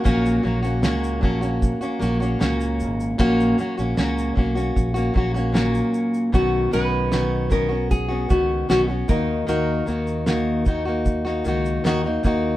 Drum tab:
SH |xx-xxx-xxxxxxxxx|xxxxxx-xxx-xxxxx|x-x-x-x-x-x-x-x-|x-xxx-x-x-xxx-x-|
SD |----o-------o---|----o-------o---|----o-------o---|----o----o--o---|
BD |o-----o-o-------|o-----o-o-o-----|o-----o-o-o---o-|------o-o-----o-|